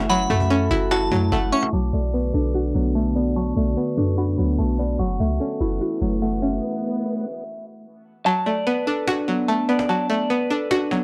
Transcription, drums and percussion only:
0.10 cajon slap
0.30 cajon bass
0.35 cajon slap
0.40 cajon bass
0.45 cajon slap
0.71 cajon bass, cajon slap
0.91 cajon slap
1.12 cajon bass, cajon slap
1.32 cajon bass
1.52 cajon slap
1.58 cajon slap
1.63 cajon slap
1.68 cajon slap
8.26 cajon slap
8.46 cajon slap
8.67 cajon slap
8.88 cajon slap
9.08 cajon slap
9.28 cajon slap
9.48 cajon slap
9.69 cajon slap
9.79 cajon slap
9.89 cajon slap
10.10 cajon slap
10.30 cajon slap
10.51 cajon slap
10.71 cajon slap
10.91 cajon slap

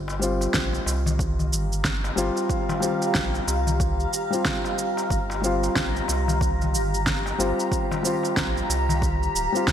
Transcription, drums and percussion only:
0.08 darbuka tek, cabasa
0.22 cabasa
0.41 darbuka ka, cabasa
0.54 kick, snare, cabasa
0.73 darbuka ka, cabasa
0.86 darbuka tek, cabasa
1.06 darbuka dum, cabasa
1.19 kick, cabasa
1.39 darbuka dum, cabasa
1.52 darbuka ka, cabasa
1.73 cabasa
1.84 kick, snare, cabasa
2.04 darbuka ka, darbuka tek, cabasa
2.18 cabasa
2.36 darbuka ka, cabasa
2.50 kick, cabasa
2.69 darbuka tek, darbuka dum, cabasa
2.82 cabasa
3.02 darbuka ka, cabasa
3.15 kick, snare, cabasa
3.34 darbuka ka, cabasa
3.48 darbuka tek, cabasa
3.67 darbuka dum, cabasa
3.80 kick, cabasa
4.00 cabasa
4.13 cabasa
4.33 cabasa
4.45 kick, snare, cabasa
4.64 darbuka tek, cabasa
4.78 cabasa
4.97 darbuka tek, cabasa
5.10 kick, cabasa
5.30 darbuka tek, cabasa
5.44 cabasa
5.63 darbuka ka, cabasa
5.76 kick, snare, cabasa
5.95 darbuka ka, cabasa
6.08 darbuka tek, cabasa
6.28 darbuka dum, cabasa
6.41 kick, cabasa
6.62 darbuka dum, cabasa
6.73 darbuka ka, cabasa
6.94 cabasa
7.06 kick, snare, cabasa
7.26 darbuka ka, darbuka tek, cabasa
7.40 cabasa
7.58 darbuka ka, cabasa
7.72 kick, cabasa
7.91 darbuka tek, darbuka dum, cabasa
8.05 cabasa
8.23 darbuka ka, cabasa
8.37 kick, snare, cabasa
8.56 darbuka ka, cabasa
8.70 darbuka tek, cabasa
8.89 darbuka dum, cabasa
9.02 kick, cabasa
9.23 cabasa
9.36 cabasa
9.55 cabasa
9.67 kick, snare, cabasa

